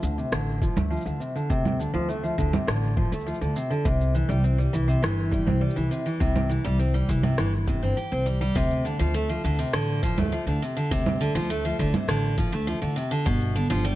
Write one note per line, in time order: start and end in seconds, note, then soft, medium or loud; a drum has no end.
0.03 0.22 D2 medium
0.03 0.16 D3 medium
0.03 shaker medium
0.18 0.31 C3 medium
0.18 shaker soft
0.32 0.68 A1 medium
0.32 0.60 D3 medium
0.32 cross-stick medium
0.32 shaker soft
0.62 0.76 F3 medium
0.62 kick loud
0.62 shaker medium
0.76 0.96 D2 medium
0.76 0.90 A3 medium
0.76 low conga medium
0.76 shaker soft
0.90 1.04 F3 medium
0.90 shaker soft
0.97 shaker soft
1.01 shaker soft
1.05 1.15 D2 medium
1.05 1.19 D3 medium
1.05 shaker soft
1.20 1.34 C3 medium
1.20 shaker medium
1.36 1.49 D3 medium
1.36 shaker soft
1.50 1.86 D2 medium
1.50 1.78 C3 medium
1.50 kick loud
1.50 shaker soft
1.65 low conga medium
1.65 shaker soft
1.79 1.93 D3 medium
1.79 shaker medium
1.94 2.30 D2 medium
1.94 2.07 F3 loud
2.09 2.22 A3 medium
2.09 shaker soft
2.23 2.37 F3 medium
2.23 shaker soft
2.38 2.57 D2 medium
2.38 2.51 D3 medium
2.38 kick medium
2.38 shaker medium
2.53 2.66 C3 medium
2.53 low conga medium
2.53 shaker soft
2.67 3.04 A1 medium
2.67 2.96 D3 medium
2.67 cross-stick medium
2.67 shaker soft
2.97 3.11 F3 medium
2.97 kick loud
3.12 3.31 D2 medium
3.12 3.26 A3 medium
3.12 shaker medium
3.20 shaker soft
3.26 3.40 F3 medium
3.26 shaker soft
3.34 shaker soft
3.41 3.51 D2 medium
3.41 3.55 D3 medium
3.41 shaker soft
3.56 3.70 C3 medium
3.56 shaker medium
3.70 3.84 D3 medium
3.70 shaker soft
3.85 4.21 C2 medium
3.85 4.13 C3 medium
3.85 kick loud
3.85 shaker soft
4.01 shaker soft
4.14 4.28 E3 medium
4.14 shaker medium
4.29 4.65 C2 medium
4.29 4.42 G3 medium
4.29 shaker soft
4.44 4.57 C4 medium
4.44 shaker soft
4.58 4.72 G3 medium
4.58 shaker soft
4.73 4.93 C2 medium
4.73 4.87 E3 medium
4.73 shaker medium
4.88 5.01 C3 medium
4.88 shaker soft
5.02 5.39 G1 medium
5.02 5.31 E3 medium
5.02 cross-stick medium
5.02 shaker soft
5.31 5.46 G3 medium
5.31 kick loud
5.31 shaker medium
5.46 5.66 C2 medium
5.46 5.61 C4 medium
5.46 low conga medium
5.61 5.75 G3 medium
5.70 shaker soft
5.76 5.86 C2 medium
5.76 5.90 E3 medium
5.76 shaker soft
5.91 6.05 C3 medium
5.91 shaker medium
6.06 6.19 E3 medium
6.06 shaker soft
6.20 6.56 C2 medium
6.20 6.48 C3 medium
6.20 kick loud
6.20 shaker soft
6.36 low conga medium
6.36 shaker soft
6.49 6.63 E3 medium
6.49 shaker medium
6.64 7.01 C2 medium
6.64 6.78 G3 medium
6.64 shaker soft
6.79 6.93 C4 medium
6.79 shaker soft
6.94 7.07 G3 medium
6.94 shaker soft
7.09 7.28 C2 medium
7.09 7.22 E3 medium
7.09 kick medium
7.09 shaker medium
7.23 7.37 C3 medium
7.23 low conga medium
7.23 shaker soft
7.38 7.74 G1 medium
7.38 7.52 E3 medium
7.38 cross-stick medium
7.38 shaker soft
7.67 7.81 C3 medium
7.67 kick loud
7.67 shaker medium
7.83 7.92 G1 medium
7.83 7.96 C4 medium
7.83 shaker soft
7.97 8.10 G4 medium
7.97 shaker soft
8.12 8.48 C2 medium
8.12 8.25 C4 medium
8.12 shaker soft
8.26 8.40 G3 medium
8.26 shaker medium
8.41 8.54 G3 medium
8.41 shaker soft
8.55 8.91 D2 medium
8.55 8.84 C3 loud
8.55 kick loud
8.55 closed hi-hat soft
8.55 shaker soft
8.71 shaker soft
8.85 8.98 D3 medium
8.85 shaker medium
8.99 9.36 D2 medium
8.99 9.13 F3 medium
8.99 closed hi-hat soft
8.99 shaker soft
9.14 9.28 A3 medium
9.14 closed hi-hat soft
9.14 shaker soft
9.29 9.43 F3 medium
9.29 closed hi-hat soft
9.29 shaker soft
9.44 9.63 D2 medium
9.44 9.58 D3 medium
9.44 shaker medium
9.59 9.72 C3 medium
9.59 closed hi-hat soft
9.73 10.10 A1 medium
9.73 10.01 D3 medium
9.73 cross-stick medium
9.73 closed hi-hat soft
9.73 shaker soft
10.03 10.17 F3 medium
10.03 kick loud
10.03 closed hi-hat soft
10.03 shaker medium
10.18 10.37 D2 medium
10.18 10.32 A3 medium
10.18 closed hi-hat soft
10.18 low conga medium
10.18 shaker soft
10.22 low conga medium
10.25 low conga soft
10.29 10.46 F3 medium
10.29 closed hi-hat soft
10.29 low conga soft
10.29 shaker soft
10.47 10.56 D2 medium
10.47 10.61 D3 medium
10.47 shaker soft
10.62 10.76 C3 medium
10.62 shaker medium
10.77 10.90 D3 medium
10.77 closed hi-hat soft
10.77 shaker soft
10.91 11.27 D2 medium
10.91 11.19 C3 loud
10.91 kick loud
10.91 closed hi-hat soft
10.91 shaker soft
11.06 low conga medium
11.06 shaker soft
11.21 11.34 D3 medium
11.21 shaker medium
11.35 11.71 D2 medium
11.35 11.49 F3 medium
11.35 closed hi-hat soft
11.35 shaker soft
11.50 11.63 A3 medium
11.50 closed hi-hat soft
11.50 shaker soft
11.65 11.78 F3 medium
11.65 closed hi-hat soft
11.65 shaker soft
11.79 11.98 D2 medium
11.79 11.93 D3 medium
11.79 kick medium
11.79 shaker medium
11.94 12.07 C3 medium
11.94 closed hi-hat soft
11.94 low conga medium
11.94 shaker soft
12.08 12.44 A1 medium
12.08 12.37 D3 medium
12.08 cross-stick medium
12.08 closed hi-hat medium
12.08 shaker soft
12.38 12.52 F3 medium
12.38 kick medium
12.38 closed hi-hat soft
12.38 shaker medium
12.53 12.72 D2 medium
12.53 12.67 A3 medium
12.53 closed hi-hat soft
12.53 shaker soft
12.67 12.81 F3 medium
12.67 closed hi-hat medium
12.67 shaker soft
12.82 12.92 D2 medium
12.82 12.95 D3 medium
12.82 shaker soft
12.96 13.11 C3 medium
12.96 shaker medium
13.11 13.25 D3 medium
13.11 closed hi-hat soft
13.11 shaker soft
13.26 13.62 G1 medium
13.26 13.54 B2 medium
13.26 kick loud
13.26 closed hi-hat medium
13.26 shaker soft
13.41 shaker soft
13.55 13.69 D3 medium
13.55 shaker medium
13.70 13.95 G1 medium
13.70 13.84 F3 medium
13.70 closed hi-hat soft
13.70 shaker soft
13.85 13.95 G3 medium
13.85 closed hi-hat medium
13.85 shaker soft